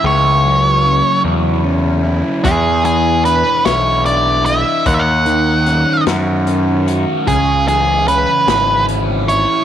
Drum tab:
HH |------|xxxxxx|xxxxxx|xxxxxx|
SD |------|---o--|---o--|---o--|
BD |------|o-----|o-----|o-----|